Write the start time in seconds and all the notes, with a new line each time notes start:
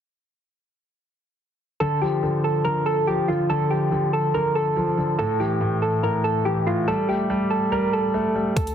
1.80 D3 A4
2.01 F3 G4
2.23 D3
2.44 A4
2.64 D3 A#4
2.86 A4
3.07 F3 G4
3.28 D3 F4
3.50 D3 A4
3.70 F3 G4
3.92 D3
4.13 A4
4.34 D3 A#4
4.55 A4
4.76 F3
4.98 D3
5.19 A2 A4
5.40 E3 G4
5.61 A2
5.82 A4
6.03 A2 A#4
6.24 A4
6.45 E3 G4
6.67 A2 F4
6.88 G3 A4
7.09 A3 G4
7.30 G3
7.50 A4
7.72 G3 A#4
7.93 A4
8.14 A3
8.35 G3
8.56 D2 A4, kick, closed hi-hat
8.67 closed hi-hat